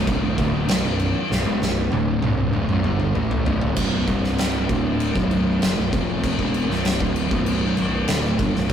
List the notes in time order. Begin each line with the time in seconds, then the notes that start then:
0.07 C1 C2 G2, kick, crash
0.22 B0 B1 F#2
0.38 D1 D2 A2 D3, kick, crash
0.69 B0 B1 F#2, snare, crash
0.84 B0 B1 F#2
1.00 crash
1.31 B0 B1 F#2, snare
1.45 E1 E2 B2
1.60 B0 B1 F#2, snare
1.91 D1 D2 A2 D3, high tom
2.22 C1 C2 G2 C3, high tom
2.52 D1 D2 A2, mid tom
2.68 B0 B1 F#2, mid tom
2.84 G1 G2 D3 G3, mid tom
3.00 mid tom
3.15 A1 A2 E3 A3, mid tom
3.31 floor tom
3.45 B0 B1 F#2, floor tom
3.61 D1 D2 A2, floor tom
3.76 B0 B1 F#2 B2, kick, crash
4.07 C1 C2 G2 C3, kick, crash
4.24 snare
4.38 snare, crash
4.69 D1 D2 A2 D3, kick, crash
5.00 crash
5.14 B0 B1 F#2 B2, kick
5.31 crash
5.61 F#1 F#2 C#3, snare, crash
5.77 B0 B1 F#2
5.92 F1 F2 C3 F3, kick, crash
6.24 kick, crash
6.39 E1 E2 B2 E3, kick
6.54 crash
6.70 B0 B1 F#2, snare
6.85 snare, crash
7.00 D1 D2 A2 D3, kick
7.16 crash
7.31 B0 B1 F#2 B2, kick
7.46 crash
7.77 B0 B1 F#2, crash
8.08 D1 D2 A2 D3, snare, crash
8.39 G1 G2 D3, kick, crash
8.54 B0 B1 F#2, snare
8.69 B0 B1 F#2, kick, crash